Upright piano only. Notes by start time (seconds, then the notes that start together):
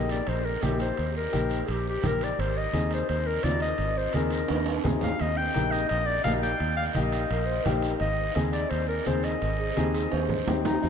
Already playing: A#3 D#4 G4
0.62 A#3 D#4 G4
1.32 A#3 D#4 G4
2.03 A#3 D#4 G4
2.73 C4 D#4 G#4
3.44 C4 D#4 F4
4.15 C4 D#4 G#4
4.84 C4 D#4 G#4
5.55 A#3 D#4 G4
6.25 A#3 D#4 G4
6.95 A#3 D#4 G4
7.65 A#3 D#4 G4
8.35 C4 D#4 G#4
9.06 C4 D#4 G#4
9.77 C4 D#4 G#4
10.48 C4 D#4 G4